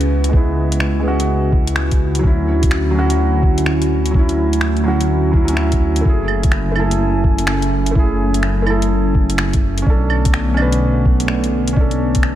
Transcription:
Already playing: detuned saw bass C#2, ambient pad C#3 C#4 E4 G#4 B4, felt piano G#3 B3 E4 F#4
0.01 closed hi-hat
0.24 closed hi-hat
0.29 felt piano G#3
0.33 felt piano B3 E4, ambient pad F#4, kick
0.72 closed hi-hat
0.80 finger snap
1.00 felt piano G#3 B3
1.08 felt piano F#4
1.20 closed hi-hat
1.52 kick
1.67 closed hi-hat
1.76 finger snap
1.91 kick, closed hi-hat
2.15 closed hi-hat
2.19 felt piano F#3
2.23 detuned saw bass D2, ambient pad D3 A3, felt piano C#4 E4, kick
2.63 kick, closed hi-hat
2.71 finger snap
2.91 felt piano F#3
2.95 felt piano C#4 F#4
3.10 closed hi-hat
3.43 kick
3.58 closed hi-hat
3.66 finger snap
3.82 closed hi-hat
4.06 closed hi-hat
4.11 felt piano F#3, kick
4.15 felt piano C#4 E4
4.29 closed hi-hat
4.53 closed hi-hat
4.61 finger snap
4.77 closed hi-hat
4.84 felt piano F#3 C#4
4.88 felt piano F#4
5.01 closed hi-hat
5.31 felt piano F#3 C#4, kick
5.36 felt piano E4
5.45 felt piano F#3, closed hi-hat
5.49 felt piano C#4
5.53 felt piano E4, finger snap
5.72 kick, closed hi-hat
5.96 closed hi-hat
6.01 detuned saw bass F#1, ambient pad F#3 A3 G#5, felt piano A3
6.05 ambient pad C#4, felt piano E4, kick
6.09 felt piano G#4
6.28 claves
6.43 kick, closed hi-hat
6.52 finger snap
6.71 felt piano A3
6.75 felt piano E4, claves
6.80 felt piano A4
6.91 closed hi-hat
7.24 kick
7.38 closed hi-hat
7.47 finger snap
7.62 closed hi-hat
7.86 closed hi-hat
7.91 felt piano A3 E4
7.95 felt piano G#4, kick
8.34 closed hi-hat
8.43 finger snap
8.62 felt piano A3 E4
8.67 felt piano A4, claves
8.82 closed hi-hat
9.15 kick
9.30 closed hi-hat
9.38 finger snap
9.53 kick, closed hi-hat
9.78 closed hi-hat
9.82 ambient pad D3 A3 B3, felt piano C#4
9.86 detuned saw bass B1, felt piano D4 A4, kick
10.10 claves
10.25 kick, closed hi-hat
10.34 finger snap
10.54 felt piano C#4 D4, claves
10.62 felt piano B4
10.72 closed hi-hat
11.05 kick
11.20 closed hi-hat
11.28 finger snap
11.44 closed hi-hat
11.68 closed hi-hat
11.73 felt piano C#4 D4, kick
11.81 felt piano A4
11.91 closed hi-hat
12.15 kick, closed hi-hat
12.23 finger snap

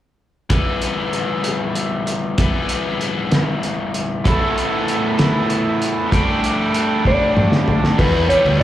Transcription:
0.50 overdriven electric guitar E3 G3 B3 E4 B4, kick, closed hi-hat
0.81 closed hi-hat
1.13 closed hi-hat
1.44 closed hi-hat
1.75 closed hi-hat
2.07 closed hi-hat
2.38 overdriven electric guitar E3 G3 B3 E4, kick, closed hi-hat
2.42 overdriven electric guitar B4
2.69 closed hi-hat
3.01 closed hi-hat
3.31 snare, closed hi-hat
3.63 closed hi-hat
3.94 closed hi-hat
4.25 overdriven electric guitar A2 E3 A3 B3 E4, kick, closed hi-hat
4.29 overdriven electric guitar A4
4.58 closed hi-hat
4.88 closed hi-hat
5.18 overdriven electric guitar A2 E3 A3 B3 E4, snare, closed hi-hat
5.50 closed hi-hat
5.82 closed hi-hat
6.11 overdriven electric guitar G3 A3 D4 G4, kick, closed hi-hat
6.15 overdriven electric guitar G4
6.44 closed hi-hat
6.74 closed hi-hat
7.05 overdriven electric guitar G3 A3 D4 G4, clean electric guitar D5, kick
7.37 mid tom
7.52 snare
7.68 floor tom
7.84 snare
7.98 picked electric bass E2, overdriven electric guitar E2 E3 G3 B3 E4 B4, clean electric guitar B4, kick, crash
8.29 overdriven electric guitar G3 B3 E4 B4, clean electric guitar C#5, closed hi-hat
8.45 picked electric bass D2

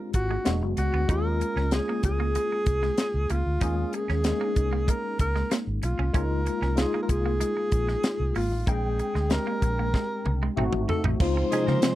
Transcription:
Already playing: tine electric piano G#3 C4 D4 F4 G4
0.13 fingered electric bass G#1, alto saxophone F#4, muted clean electric guitar stroke, kick, closed hi-hat
0.31 clean electric guitar G#3
0.45 fingered electric bass E1, tine electric piano G#3 B3 D4 F#4, clean electric guitar A#3, snare, closed hi-hat
0.62 fingered electric bass F#1
0.77 fingered electric bass C#2, alto saxophone F#4, muted clean electric guitar stroke, closed hi-hat
0.93 fingered electric bass D2, clean electric guitar B3
1.08 fingered electric bass D#2, tine electric piano G#3 A#3 C#4 F4, clean electric guitar D#4, alto saxophone A#4, kick, closed hi-hat
1.41 muted clean electric guitar stroke, closed hi-hat
1.56 fingered electric bass C#2, clean electric guitar C#4, snare
1.71 tine electric piano G#3 A#3 C#4 G#4, alto saxophone G#4, snare, closed hi-hat
1.89 clean electric guitar A#3
2.03 fingered electric bass C#2, alto saxophone G#4, muted clean electric guitar stroke, kick, closed hi-hat
2.20 clean electric guitar A#3
2.35 clean electric guitar G#3, closed hi-hat
2.52 muted clean electric guitar stroke
2.66 fingered electric bass C2, kick, closed hi-hat
2.83 clean electric guitar G#3, snare
2.98 snare, closed hi-hat
3.14 fingered electric bass C#2
3.30 fingered electric bass C#2, clean electric guitar A#3, alto saxophone F4, closed hi-hat
3.46 fingered electric bass D2
3.61 fingered electric bass D#2, tine electric piano G#3 A#3 C#4 G#4, clean electric guitar D#4, kick, closed hi-hat
3.93 alto saxophone G#4, muted clean electric guitar stroke, closed hi-hat
4.09 fingered electric bass D#2, clean electric guitar C#4, snare
4.24 tine electric piano G#3 A#3 C#4 D#4, snare, closed hi-hat
4.41 clean electric guitar A#3
4.56 fingered electric bass C2, muted clean electric guitar stroke, kick, closed hi-hat
4.73 clean electric guitar A#3
4.88 clean electric guitar G#3, alto saxophone A#4, kick, closed hi-hat
5.19 fingered electric bass C#2, alto saxophone A#4, muted clean electric guitar stroke, kick, closed hi-hat
5.36 clean electric guitar G#3, snare
5.51 clean electric guitar A#3, snare, closed hi-hat
5.67 fingered electric bass G#1
5.83 fingered electric bass B1, alto saxophone F4, muted clean electric guitar stroke, closed hi-hat
5.99 fingered electric bass C2, clean electric guitar C#4
6.13 fingered electric bass C#2, tine electric piano G#3 A#3 D#4 F4, clean electric guitar C#4, alto saxophone A#4, kick, closed hi-hat
6.46 muted clean electric guitar stroke, closed hi-hat
6.62 fingered electric bass C2, clean electric guitar C#4, snare
6.76 tine electric piano G#3 A#3 D#4 F4, alto saxophone G#4, snare, closed hi-hat
6.94 clean electric guitar A#3
7.02 alto saxophone A#4
7.09 fingered electric bass C2, alto saxophone G#4, muted clean electric guitar stroke, kick, closed hi-hat
7.26 clean electric guitar A#3
7.40 clean electric guitar G#3, closed hi-hat
7.57 muted clean electric guitar stroke
7.72 fingered electric bass A#1, kick, closed hi-hat
7.88 clean electric guitar G#3, snare
8.04 snare, closed hi-hat
8.20 fingered electric bass C2
8.35 fingered electric bass G#1, clean electric guitar A#3, alto saxophone F4, open hi-hat
8.51 fingered electric bass A1
8.67 fingered electric bass A#1, tine electric piano G#3 C4 D4 G5, clean electric guitar A#3, alto saxophone G#4, kick, closed hi-hat
8.99 muted clean electric guitar stroke, closed hi-hat
9.15 fingered electric bass D2, clean electric guitar G#3, snare
9.29 tine electric piano G#3 C4 D4 G4, alto saxophone A#4, snare, closed hi-hat
9.47 clean electric guitar A#3
9.62 fingered electric bass A#1, muted clean electric guitar stroke, kick, closed hi-hat
9.79 clean electric guitar A#3
9.94 clean electric guitar G#3, kick, snare
10.26 fingered electric bass C2, muted clean electric guitar stroke, high tom
10.43 clean electric guitar G#3
10.56 fingered electric bass G#1, tine electric piano A3 C4 D#4 F#4, clean electric guitar C4, mid tom
10.73 fingered electric bass G#1, mid tom
10.89 alto saxophone A4, muted clean electric guitar stroke, floor tom
11.04 fingered electric bass A1, clean electric guitar D#4, floor tom
11.19 fingered electric bass C#2, analog synth pad C3 F3 G#3 D#4, tine electric piano G#3 C4 D#4 F4, alto saxophone C5, kick, crash, muted conga
11.37 muted clean electric guitar stroke
11.51 tine electric piano C3 G#3 D#4 G#4, horn section G#3 D#4 F4 G#4, clean electric guitar C#4, closed hi-hat, muted conga
11.67 fingered electric bass C#3, horn section A#3 D#4 G4 A#4, clean electric guitar A#3, snare
11.82 clean electric guitar C4, snare, closed hi-hat, high conga

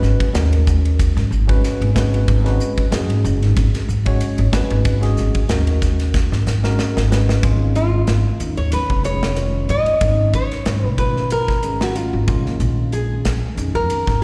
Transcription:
Already playing: tine electric piano G#3 C#4 F#4 B4
0.02 upright bass G#1, snare, hi-hat pedal
0.20 kick, ride
0.33 upright bass D#2, tine electric piano G#3 C#4 F#4 A#4, snare, hi-hat pedal, ride
0.53 ride
0.67 kick, hi-hat pedal
0.85 ride
0.99 kick, hi-hat pedal, ride
1.17 upright bass G#2, snare, ride
1.31 upright bass G#1, hi-hat pedal
1.47 tine electric piano G#3 C#4 F#4 B4, kick, ride
1.64 snare, hi-hat pedal, ride
1.81 upright bass G#1, ride
1.95 tine electric piano G#3 C#4 F#4 B4, kick, snare, hi-hat pedal
2.14 ride
2.28 upright bass G#1, kick, hi-hat pedal, ride
2.45 tine electric piano G#3 C#4 F#4 B4, snare, ride
2.60 hi-hat pedal
2.77 kick, ride
2.91 upright bass F2, tine electric piano G#3 C#4 F#4 G#4, snare, hi-hat pedal, ride
3.10 upright bass G#2, ride
3.24 upright bass F#1, hi-hat pedal
3.42 upright bass G#1, snare, ride
3.57 upright bass G#1, kick, hi-hat pedal, ride
3.74 muted upright bass stroke, snare, ride
3.88 upright bass G#2, hi-hat pedal
4.06 tine electric piano G#3 C#4 F#4 C#5, kick, ride
4.21 hi-hat pedal, ride
4.38 upright bass G#1, ride
4.52 tine electric piano G#3 C#4 F#4 B4, kick, snare, hi-hat pedal
4.70 upright bass G#1, ride
4.85 kick, hi-hat pedal, ride
5.01 tine electric piano G#3 C#4 F#4 G#4, snare, ride
5.17 upright bass G#1, snare, hi-hat pedal
5.35 muted upright bass stroke, kick, ride
5.49 upright bass D#2, tine electric piano G#3 C#4 F#4 A#4, snare, hi-hat pedal, ride
5.67 ride
5.82 kick, snare, hi-hat pedal
6.00 snare, ride
6.14 kick, snare, hi-hat pedal
6.32 upright bass G#2, snare
6.47 upright bass G#1, snare, hi-hat pedal
6.63 tine electric piano G#3 C#4 F#4 A#4, snare
6.78 snare, hi-hat pedal
6.97 upright bass G#1, snare
7.10 tine electric piano G#3 C#4 F#4 B4, snare, hi-hat pedal
7.29 snare
7.42 upright bass G#1, tine electric piano D#3 G#3 C#4 F4, kick, hi-hat pedal, ride
7.75 nylon-string guitar F4, hi-hat pedal, ride
8.07 upright bass G#1, snare, hi-hat pedal, ride
8.39 upright bass D#2, tine electric piano D#3 G#3 C#4 D#4, hi-hat pedal, ride
8.57 upright bass D#2, nylon-string guitar C#5, ride
8.72 nylon-string guitar B4, muted upright bass stroke, hi-hat pedal, ride
8.90 upright bass F1, kick
9.03 tine electric piano D#3 G#3 C#4 G#4, nylon-string guitar C#5, hi-hat pedal, ride
9.23 snare
9.35 tine electric piano D#3 G#3 C#4 F4, hi-hat pedal, ride
9.69 upright bass G#2, nylon-string guitar D#5, hi-hat pedal, ride
9.86 ride
10.01 upright bass G#1, tine electric piano D#3 G#3 C#4 D#4, kick, hi-hat pedal, ride
10.33 nylon-string guitar C#5, kick, hi-hat pedal, ride
10.51 snare, ride
10.66 upright bass G#2, snare, hi-hat pedal, ride
10.84 upright bass B1, nylon-string guitar B4
10.97 tine electric piano D#3 G#3 C#4 F4, nylon-string guitar B4, kick, hi-hat pedal, ride
11.16 snare
11.30 nylon-string guitar A#4, hi-hat pedal, ride
11.48 kick, snare
11.62 upright bass G#1, tine electric piano D#3 G#3 C#4 G#4, hi-hat pedal, ride
11.81 nylon-string guitar F#4, snare
11.94 tine electric piano D#3 G#3 C#4 F4, nylon-string guitar F4, hi-hat pedal, ride
12.13 upright bass G#1
12.26 upright bass A#1, tine electric piano D#3 G#3 C#4 F4, kick, hi-hat pedal, ride
12.45 upright bass D#2, snare
12.60 upright bass A#1, hi-hat pedal, ride
12.92 nylon-string guitar G#4, hi-hat pedal, ride
13.25 upright bass A#1, snare, hi-hat pedal, ride
13.55 upright bass F2, tine electric piano D#3 G#3 C#4 D#4, hi-hat pedal, ride
13.75 upright bass F2, nylon-string guitar A#4, ride
13.90 muted upright bass stroke, hi-hat pedal, ride
14.07 upright bass G#1, kick, snare
14.20 tine electric piano D#3 G#3

